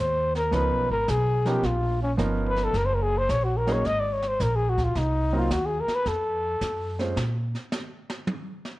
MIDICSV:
0, 0, Header, 1, 6, 480
1, 0, Start_track
1, 0, Tempo, 553506
1, 449, Time_signature, 4, 2, 24, 8
1, 7627, End_track
2, 0, Start_track
2, 0, Title_t, "Trumpet"
2, 0, Program_c, 0, 56
2, 0, Note_on_c, 0, 72, 90
2, 309, Note_off_c, 0, 72, 0
2, 313, Note_on_c, 0, 70, 78
2, 465, Note_on_c, 0, 71, 82
2, 478, Note_off_c, 0, 70, 0
2, 785, Note_off_c, 0, 71, 0
2, 793, Note_on_c, 0, 70, 88
2, 951, Note_on_c, 0, 68, 77
2, 964, Note_off_c, 0, 70, 0
2, 1278, Note_on_c, 0, 67, 77
2, 1291, Note_off_c, 0, 68, 0
2, 1434, Note_on_c, 0, 65, 73
2, 1447, Note_off_c, 0, 67, 0
2, 1750, Note_off_c, 0, 65, 0
2, 1756, Note_on_c, 0, 61, 73
2, 1843, Note_off_c, 0, 61, 0
2, 2156, Note_on_c, 0, 71, 92
2, 2290, Note_on_c, 0, 69, 82
2, 2303, Note_off_c, 0, 71, 0
2, 2402, Note_on_c, 0, 70, 85
2, 2415, Note_off_c, 0, 69, 0
2, 2473, Note_on_c, 0, 72, 90
2, 2486, Note_off_c, 0, 70, 0
2, 2551, Note_on_c, 0, 70, 69
2, 2564, Note_off_c, 0, 72, 0
2, 2621, Note_on_c, 0, 68, 87
2, 2634, Note_off_c, 0, 70, 0
2, 2755, Note_on_c, 0, 72, 95
2, 2768, Note_off_c, 0, 68, 0
2, 2866, Note_on_c, 0, 73, 91
2, 2879, Note_off_c, 0, 72, 0
2, 2982, Note_on_c, 0, 66, 72
2, 2995, Note_off_c, 0, 73, 0
2, 3096, Note_on_c, 0, 70, 86
2, 3109, Note_off_c, 0, 66, 0
2, 3229, Note_on_c, 0, 73, 92
2, 3242, Note_off_c, 0, 70, 0
2, 3346, Note_on_c, 0, 75, 104
2, 3359, Note_off_c, 0, 73, 0
2, 3468, Note_on_c, 0, 74, 87
2, 3481, Note_off_c, 0, 75, 0
2, 3581, Note_on_c, 0, 73, 86
2, 3594, Note_off_c, 0, 74, 0
2, 3707, Note_on_c, 0, 72, 90
2, 3720, Note_off_c, 0, 73, 0
2, 3828, Note_on_c, 0, 70, 87
2, 3841, Note_off_c, 0, 72, 0
2, 3949, Note_on_c, 0, 68, 82
2, 3962, Note_off_c, 0, 70, 0
2, 4068, Note_on_c, 0, 66, 79
2, 4081, Note_off_c, 0, 68, 0
2, 4192, Note_on_c, 0, 65, 72
2, 4205, Note_off_c, 0, 66, 0
2, 4311, Note_on_c, 0, 63, 75
2, 4324, Note_off_c, 0, 65, 0
2, 4670, Note_on_c, 0, 65, 81
2, 4683, Note_off_c, 0, 63, 0
2, 4788, Note_on_c, 0, 66, 76
2, 4801, Note_off_c, 0, 65, 0
2, 4906, Note_on_c, 0, 68, 80
2, 4919, Note_off_c, 0, 66, 0
2, 5037, Note_on_c, 0, 70, 93
2, 5050, Note_off_c, 0, 68, 0
2, 5159, Note_on_c, 0, 71, 102
2, 5172, Note_off_c, 0, 70, 0
2, 5269, Note_on_c, 0, 69, 82
2, 5282, Note_off_c, 0, 71, 0
2, 6143, Note_off_c, 0, 69, 0
2, 7627, End_track
3, 0, Start_track
3, 0, Title_t, "Grand piano"
3, 0, Program_c, 1, 0
3, 444, Note_on_c, 1, 53, 68
3, 448, Note_on_c, 1, 59, 60
3, 450, Note_on_c, 1, 61, 59
3, 458, Note_on_c, 1, 63, 58
3, 462, Note_on_c, 1, 70, 68
3, 742, Note_off_c, 1, 53, 0
3, 744, Note_off_c, 1, 59, 0
3, 745, Note_off_c, 1, 61, 0
3, 749, Note_off_c, 1, 63, 0
3, 751, Note_off_c, 1, 70, 0
3, 1259, Note_on_c, 1, 53, 66
3, 1263, Note_on_c, 1, 59, 62
3, 1264, Note_on_c, 1, 61, 61
3, 1267, Note_on_c, 1, 63, 61
3, 1270, Note_on_c, 1, 70, 75
3, 1396, Note_off_c, 1, 53, 0
3, 1398, Note_off_c, 1, 59, 0
3, 1398, Note_off_c, 1, 61, 0
3, 1400, Note_off_c, 1, 63, 0
3, 1402, Note_off_c, 1, 70, 0
3, 1885, Note_on_c, 1, 53, 75
3, 1887, Note_on_c, 1, 59, 70
3, 1891, Note_on_c, 1, 61, 65
3, 1894, Note_on_c, 1, 63, 63
3, 1898, Note_on_c, 1, 70, 83
3, 2369, Note_off_c, 1, 53, 0
3, 2370, Note_off_c, 1, 59, 0
3, 2372, Note_off_c, 1, 61, 0
3, 2373, Note_off_c, 1, 63, 0
3, 2375, Note_off_c, 1, 70, 0
3, 3181, Note_on_c, 1, 54, 69
3, 3183, Note_on_c, 1, 58, 63
3, 3189, Note_on_c, 1, 61, 63
3, 3193, Note_on_c, 1, 63, 69
3, 3193, Note_on_c, 1, 68, 77
3, 3318, Note_off_c, 1, 54, 0
3, 3319, Note_off_c, 1, 58, 0
3, 3322, Note_off_c, 1, 61, 0
3, 3324, Note_off_c, 1, 63, 0
3, 3324, Note_off_c, 1, 68, 0
3, 4616, Note_on_c, 1, 58, 59
3, 4619, Note_on_c, 1, 54, 64
3, 4621, Note_on_c, 1, 60, 60
3, 4625, Note_on_c, 1, 63, 59
3, 4628, Note_on_c, 1, 70, 70
3, 4755, Note_off_c, 1, 58, 0
3, 4757, Note_off_c, 1, 54, 0
3, 4758, Note_off_c, 1, 60, 0
3, 4760, Note_off_c, 1, 63, 0
3, 4761, Note_off_c, 1, 70, 0
3, 6059, Note_on_c, 1, 56, 57
3, 6061, Note_on_c, 1, 60, 50
3, 6067, Note_on_c, 1, 61, 53
3, 6069, Note_on_c, 1, 65, 47
3, 6069, Note_on_c, 1, 72, 59
3, 6196, Note_off_c, 1, 56, 0
3, 6196, Note_off_c, 1, 60, 0
3, 6200, Note_off_c, 1, 61, 0
3, 6201, Note_off_c, 1, 65, 0
3, 6201, Note_off_c, 1, 72, 0
3, 7627, End_track
4, 0, Start_track
4, 0, Title_t, "Upright bass"
4, 0, Program_c, 2, 32
4, 0, Note_on_c, 2, 39, 89
4, 438, Note_off_c, 2, 39, 0
4, 451, Note_on_c, 2, 37, 82
4, 619, Note_off_c, 2, 37, 0
4, 619, Note_on_c, 2, 35, 56
4, 772, Note_off_c, 2, 35, 0
4, 777, Note_on_c, 2, 32, 63
4, 923, Note_off_c, 2, 32, 0
4, 937, Note_on_c, 2, 35, 94
4, 1400, Note_off_c, 2, 35, 0
4, 1414, Note_on_c, 2, 34, 79
4, 1879, Note_off_c, 2, 34, 0
4, 1893, Note_on_c, 2, 31, 86
4, 2358, Note_off_c, 2, 31, 0
4, 2373, Note_on_c, 2, 30, 84
4, 2839, Note_off_c, 2, 30, 0
4, 2854, Note_on_c, 2, 34, 89
4, 3319, Note_off_c, 2, 34, 0
4, 3337, Note_on_c, 2, 32, 82
4, 3801, Note_off_c, 2, 32, 0
4, 3815, Note_on_c, 2, 34, 93
4, 4279, Note_off_c, 2, 34, 0
4, 4296, Note_on_c, 2, 36, 83
4, 4760, Note_off_c, 2, 36, 0
4, 4775, Note_on_c, 2, 39, 88
4, 5078, Note_off_c, 2, 39, 0
4, 5255, Note_on_c, 2, 41, 77
4, 5718, Note_off_c, 2, 41, 0
4, 5733, Note_on_c, 2, 42, 85
4, 6197, Note_off_c, 2, 42, 0
4, 6209, Note_on_c, 2, 46, 80
4, 6527, Note_off_c, 2, 46, 0
4, 7627, End_track
5, 0, Start_track
5, 0, Title_t, "Muted upright bass strokes"
5, 5095, Note_on_c, 9, 29, 39
5, 5182, Note_off_c, 9, 29, 0
5, 7627, End_track
6, 0, Start_track
6, 0, Title_t, "Drums"
6, 303, Note_on_c, 9, 38, 37
6, 390, Note_off_c, 9, 38, 0
6, 453, Note_on_c, 9, 36, 24
6, 454, Note_on_c, 9, 25, 56
6, 454, Note_on_c, 9, 38, 45
6, 540, Note_off_c, 9, 36, 0
6, 541, Note_off_c, 9, 38, 0
6, 933, Note_on_c, 9, 36, 21
6, 935, Note_on_c, 9, 38, 60
6, 936, Note_on_c, 9, 44, 52
6, 1020, Note_off_c, 9, 36, 0
6, 1022, Note_off_c, 9, 38, 0
6, 1023, Note_off_c, 9, 44, 0
6, 1262, Note_on_c, 9, 38, 42
6, 1349, Note_off_c, 9, 38, 0
6, 1413, Note_on_c, 9, 36, 24
6, 1416, Note_off_c, 9, 25, 0
6, 1416, Note_on_c, 9, 25, 44
6, 1416, Note_on_c, 9, 38, 43
6, 1500, Note_off_c, 9, 36, 0
6, 1503, Note_off_c, 9, 38, 0
6, 1893, Note_on_c, 9, 36, 15
6, 1896, Note_on_c, 9, 38, 50
6, 1897, Note_on_c, 9, 44, 52
6, 1980, Note_off_c, 9, 36, 0
6, 1983, Note_off_c, 9, 38, 0
6, 1984, Note_off_c, 9, 44, 0
6, 2222, Note_on_c, 9, 38, 38
6, 2309, Note_off_c, 9, 38, 0
6, 2374, Note_on_c, 9, 36, 21
6, 2376, Note_off_c, 9, 25, 0
6, 2376, Note_on_c, 9, 25, 42
6, 2376, Note_on_c, 9, 38, 45
6, 2460, Note_off_c, 9, 36, 0
6, 2463, Note_off_c, 9, 38, 0
6, 2854, Note_on_c, 9, 36, 23
6, 2857, Note_on_c, 9, 38, 60
6, 2858, Note_on_c, 9, 44, 48
6, 2941, Note_off_c, 9, 36, 0
6, 2944, Note_off_c, 9, 38, 0
6, 2945, Note_off_c, 9, 44, 0
6, 3188, Note_on_c, 9, 38, 43
6, 3274, Note_off_c, 9, 38, 0
6, 3335, Note_on_c, 9, 36, 19
6, 3338, Note_off_c, 9, 25, 0
6, 3338, Note_on_c, 9, 25, 51
6, 3338, Note_on_c, 9, 38, 43
6, 3422, Note_off_c, 9, 36, 0
6, 3425, Note_off_c, 9, 38, 0
6, 3664, Note_on_c, 9, 38, 48
6, 3750, Note_off_c, 9, 38, 0
6, 3814, Note_on_c, 9, 38, 54
6, 3815, Note_on_c, 9, 36, 22
6, 3815, Note_on_c, 9, 44, 49
6, 3901, Note_off_c, 9, 36, 0
6, 3901, Note_off_c, 9, 38, 0
6, 3902, Note_off_c, 9, 44, 0
6, 4141, Note_on_c, 9, 36, 53
6, 4143, Note_on_c, 9, 38, 40
6, 4227, Note_off_c, 9, 36, 0
6, 4230, Note_off_c, 9, 38, 0
6, 4293, Note_off_c, 9, 25, 0
6, 4293, Note_on_c, 9, 25, 51
6, 4293, Note_on_c, 9, 38, 46
6, 4294, Note_on_c, 9, 36, 27
6, 4380, Note_off_c, 9, 36, 0
6, 4380, Note_off_c, 9, 38, 0
6, 4774, Note_on_c, 9, 36, 21
6, 4776, Note_on_c, 9, 38, 59
6, 4777, Note_on_c, 9, 44, 63
6, 4860, Note_off_c, 9, 36, 0
6, 4862, Note_off_c, 9, 38, 0
6, 4863, Note_off_c, 9, 44, 0
6, 5102, Note_on_c, 9, 38, 42
6, 5189, Note_off_c, 9, 38, 0
6, 5253, Note_off_c, 9, 25, 0
6, 5253, Note_on_c, 9, 25, 44
6, 5253, Note_on_c, 9, 36, 18
6, 5253, Note_on_c, 9, 38, 45
6, 5340, Note_off_c, 9, 36, 0
6, 5340, Note_off_c, 9, 38, 0
6, 5733, Note_on_c, 9, 36, 22
6, 5733, Note_on_c, 9, 38, 51
6, 5734, Note_on_c, 9, 44, 46
6, 5820, Note_off_c, 9, 36, 0
6, 5820, Note_off_c, 9, 38, 0
6, 5821, Note_off_c, 9, 44, 0
6, 6062, Note_on_c, 9, 38, 39
6, 6149, Note_off_c, 9, 38, 0
6, 6215, Note_on_c, 9, 38, 92
6, 6302, Note_off_c, 9, 38, 0
6, 6544, Note_on_c, 9, 38, 31
6, 6599, Note_off_c, 9, 25, 0
6, 6630, Note_off_c, 9, 38, 0
6, 6694, Note_on_c, 9, 38, 88
6, 6695, Note_on_c, 9, 44, 53
6, 6781, Note_off_c, 9, 38, 0
6, 6782, Note_off_c, 9, 44, 0
6, 7022, Note_on_c, 9, 38, 90
6, 7109, Note_off_c, 9, 38, 0
6, 7175, Note_on_c, 9, 48, 96
6, 7261, Note_off_c, 9, 48, 0
6, 7502, Note_on_c, 9, 38, 41
6, 7589, Note_off_c, 9, 38, 0
6, 7627, End_track
0, 0, End_of_file